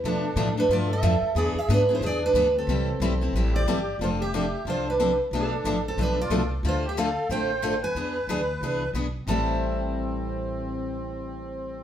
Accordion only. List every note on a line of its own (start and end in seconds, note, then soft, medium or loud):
0.04 0.53 D4 medium
0.57 0.69 D4 medium
0.70 0.89 F4 medium
0.88 1.32 A4 medium
1.35 1.54 G#4 medium
1.55 1.69 G#4 medium
1.68 1.89 D4 medium
1.92 2.02 E4 medium
2.02 2.20 G#4 medium
2.22 2.53 D4 medium
2.55 3.63 C4 medium
3.54 3.97 G4 medium
4.01 4.09 F4 medium
4.20 4.63 G4 medium
4.66 4.85 F4 medium
4.86 5.17 D4 medium
5.34 5.82 D4 medium
5.88 5.98 C4 medium
6.00 6.18 D4 medium
6.21 6.50 F4 medium
6.65 6.83 F4 medium
6.85 6.97 G4 medium
6.99 7.28 A4 medium
7.31 7.79 C5 medium
7.82 8.90 B4 medium
9.26 11.83 C4 medium